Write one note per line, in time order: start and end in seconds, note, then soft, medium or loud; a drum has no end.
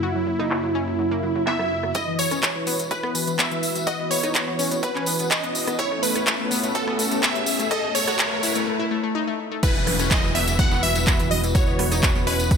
0.00 1.91 F#2 medium
0.00 1.91 C#3 medium
0.00 1.91 A#3 medium
0.00 1.43 E4 loud
0.00 1.91 E4 medium
0.00 0.13 F#4 loud
0.15 0.24 F#3 medium
0.27 0.37 F#3 medium
0.27 open hi-hat medium
0.39 0.48 D#4 medium
0.39 cross-stick medium
0.51 0.61 F#3 medium
0.51 clap loud
0.64 0.72 F#3 medium
0.75 0.85 C#4 medium
0.75 open hi-hat medium
0.88 0.96 F#3 medium
0.99 1.09 F#3 medium
0.99 swell medium
1.12 1.20 A#3 medium
1.23 1.33 F#3 medium
1.23 open hi-hat loud
1.35 1.44 F#3 medium
1.47 1.57 B3 medium
1.47 1.92 E5 loud
1.47 clap loud
1.59 1.68 F#3 medium
1.59 cross-stick medium
1.83 1.92 F#3 medium
1.83 cross-stick medium
1.94 5.77 E1 medium
1.94 5.75 E3 medium
1.94 5.75 E4 medium
1.94 2.05 E4 loud
1.94 5.75 F#4 medium
1.94 5.75 B4 medium
1.94 2.20 D#5 loud
1.94 kick loud
1.94 closed hi-hat medium
1.94 tambourine soft
1.94 riser medium
2.07 2.16 E3 medium
2.19 2.29 E3 medium
2.19 2.90 C#5 loud
2.19 open hi-hat loud
2.19 tambourine medium
2.31 2.40 C#4 medium
2.31 cross-stick medium
2.31 closed hi-hat soft
2.31 tambourine medium
2.43 2.53 E3 medium
2.43 kick loud
2.43 clap loud
2.43 closed hi-hat medium
2.43 tambourine soft
2.55 2.64 E3 medium
2.67 2.77 B3 medium
2.67 open hi-hat medium
2.67 tambourine medium
2.79 2.88 E3 medium
2.79 closed hi-hat medium
2.79 tambourine soft
2.91 3.01 E3 medium
2.91 3.36 B4 loud
2.91 kick loud
2.91 closed hi-hat medium
2.91 tambourine soft
3.03 3.12 B3 medium
3.03 cross-stick medium
3.15 3.25 E3 medium
3.15 open hi-hat loud
3.15 tambourine loud
3.27 3.36 E3 medium
3.27 closed hi-hat medium
3.27 tambourine soft
3.39 3.49 B3 medium
3.39 3.88 E5 loud
3.39 kick loud
3.39 clap loud
3.39 closed hi-hat medium
3.51 3.60 E3 medium
3.51 closed hi-hat soft
3.63 open hi-hat medium
3.63 tambourine medium
3.75 3.84 E3 medium
3.75 closed hi-hat medium
3.75 tambourine medium
3.87 3.97 F#4 loud
3.87 4.12 D#5 loud
3.87 kick loud
3.87 closed hi-hat medium
3.87 tambourine soft
3.99 4.08 B3 medium
4.11 4.21 B3 medium
4.11 4.82 C#5 loud
4.11 open hi-hat loud
4.11 tambourine medium
4.23 4.32 D#4 medium
4.23 cross-stick medium
4.23 closed hi-hat soft
4.23 tambourine soft
4.35 4.45 B3 medium
4.35 kick loud
4.35 clap loud
4.35 closed hi-hat medium
4.47 4.56 B3 medium
4.59 4.69 C#4 medium
4.59 open hi-hat medium
4.59 tambourine loud
4.71 4.80 B3 medium
4.71 closed hi-hat medium
4.71 tambourine medium
4.83 4.93 B3 medium
4.83 5.27 B4 loud
4.83 kick loud
4.83 closed hi-hat medium
4.83 tambourine soft
4.95 5.04 C#4 medium
4.95 clap soft
5.06 5.17 B3 medium
5.06 open hi-hat loud
5.06 tambourine medium
5.19 5.28 B3 medium
5.19 closed hi-hat medium
5.19 tambourine medium
5.31 5.41 C#4 medium
5.31 5.80 D#5 loud
5.31 kick loud
5.31 clap loud
5.31 closed hi-hat medium
5.43 5.52 B3 medium
5.43 closed hi-hat soft
5.55 open hi-hat medium
5.55 tambourine medium
5.67 5.76 B3 medium
5.67 cross-stick medium
5.67 closed hi-hat medium
5.67 tambourine soft
5.79 8.67 A1 medium
5.79 8.64 A3 medium
5.79 8.64 B3 medium
5.79 8.64 C#4 medium
5.79 5.89 E4 loud
5.79 6.04 C#5 loud
5.79 kick loud
5.79 closed hi-hat medium
5.79 tambourine soft
5.91 6.00 A3 medium
6.03 6.13 A3 medium
6.03 6.76 B4 loud
6.03 open hi-hat loud
6.03 tambourine loud
6.15 6.24 C#4 medium
6.15 cross-stick medium
6.15 closed hi-hat soft
6.15 tambourine medium
6.26 6.37 A3 medium
6.26 kick loud
6.26 clap loud
6.26 closed hi-hat medium
6.26 tambourine soft
6.40 6.48 A3 medium
6.51 6.61 B3 loud
6.51 open hi-hat medium
6.51 tambourine loud
6.63 6.72 A3 medium
6.63 closed hi-hat medium
6.63 tambourine medium
6.75 6.85 A3 medium
6.75 7.24 A4 medium
6.75 kick loud
6.75 closed hi-hat medium
6.75 tambourine soft
6.88 6.96 B3 medium
6.88 cross-stick medium
6.99 7.09 A3 medium
6.99 open hi-hat loud
6.99 tambourine loud
7.11 7.20 A3 medium
7.11 closed hi-hat soft
7.11 tambourine soft
7.23 7.33 B3 medium
7.23 7.70 E5 loud
7.23 kick loud
7.23 clap loud
7.23 closed hi-hat medium
7.35 7.44 A3 medium
7.35 closed hi-hat soft
7.46 open hi-hat medium
7.46 tambourine loud
7.59 7.68 A3 medium
7.59 closed hi-hat medium
7.59 tambourine medium
7.71 7.81 A4 loud
7.71 7.93 D#5 loud
7.71 kick loud
7.71 closed hi-hat medium
7.71 tambourine soft
7.83 7.92 A3 medium
7.95 8.05 A3 medium
7.95 8.63 C#5 loud
7.95 open hi-hat loud
7.95 tambourine loud
8.07 8.16 F#4 medium
8.07 cross-stick medium
8.07 closed hi-hat soft
8.07 tambourine medium
8.19 8.29 A3 medium
8.19 kick loud
8.19 clap loud
8.19 closed hi-hat medium
8.19 tambourine soft
8.31 8.40 A3 medium
8.43 8.53 E4 loud
8.43 open hi-hat loud
8.43 tambourine medium
8.55 8.64 A3 medium
8.55 closed hi-hat soft
8.55 tambourine soft
8.67 8.77 A3 medium
8.79 8.88 E4 medium
8.91 9.01 A3 medium
9.04 9.12 A3 medium
9.15 9.25 D#4 loud
9.28 9.36 A3 medium
9.52 9.60 A3 medium
9.63 12.57 E1 medium
9.63 12.57 E3 medium
9.63 12.57 E4 medium
9.63 9.73 E4 loud
9.63 12.57 F#4 medium
9.63 10.12 B4 loud
9.63 12.57 B4 medium
9.63 kick loud
9.63 closed hi-hat medium
9.63 crash loud
9.63 tambourine medium
9.63 downlifter medium
9.75 9.84 E3 medium
9.75 tambourine soft
9.87 9.97 E3 medium
9.87 cross-stick medium
9.87 open hi-hat loud
9.87 high conga loud
9.99 10.08 C#4 medium
9.99 cross-stick medium
9.99 closed hi-hat medium
9.99 tambourine medium
10.11 10.21 E3 medium
10.11 10.34 D#5 loud
10.11 kick loud
10.11 clap loud
10.11 closed hi-hat medium
10.11 tambourine medium
10.23 10.32 E3 medium
10.23 tambourine soft
10.23 high conga medium
10.35 10.45 B3 loud
10.35 10.60 E5 loud
10.35 open hi-hat loud
10.35 cowbell medium
10.48 10.56 E3 medium
10.48 closed hi-hat medium
10.48 tambourine medium
10.59 10.69 E3 medium
10.59 10.84 F#5 loud
10.59 kick loud
10.59 closed hi-hat medium
10.59 tambourine medium
10.59 high conga medium
10.71 10.80 B3 medium
10.71 tambourine soft
10.71 high bongo medium
10.83 10.93 E3 medium
10.83 11.30 E5 loud
10.83 open hi-hat loud
10.95 11.04 E3 medium
10.95 closed hi-hat medium
10.95 tambourine medium
10.95 high conga medium
11.07 11.17 B3 medium
11.07 kick loud
11.07 clap loud
11.07 closed hi-hat medium
11.07 tambourine medium
11.19 11.28 E3 medium
11.19 closed hi-hat soft
11.19 tambourine soft
11.31 11.42 D#5 loud
11.31 open hi-hat loud
11.31 high conga loud
11.44 11.52 E3 medium
11.44 closed hi-hat medium
11.44 tambourine medium
11.55 11.65 F#4 loud
11.55 12.23 C#5 loud
11.55 kick loud
11.55 closed hi-hat medium
11.55 tambourine medium
11.67 11.76 B3 medium
11.67 tambourine soft
11.79 11.89 B3 medium
11.79 cross-stick medium
11.79 open hi-hat loud
11.79 high bongo medium
11.79 high conga medium
11.92 12.00 D#4 medium
11.92 cross-stick medium
11.92 closed hi-hat medium
11.92 tambourine medium
12.03 12.13 B3 medium
12.03 kick loud
12.03 clap loud
12.03 closed hi-hat medium
12.03 tambourine medium
12.15 12.24 B3 medium
12.15 tambourine soft
12.15 high conga medium
12.27 12.37 C#4 loud
12.27 12.57 B4 medium
12.27 open hi-hat loud
12.27 cowbell loud
12.40 12.48 B3 medium
12.40 closed hi-hat medium
12.40 tambourine medium
12.51 12.57 B3 medium
12.51 kick loud
12.51 closed hi-hat medium
12.51 tambourine medium
12.51 high conga medium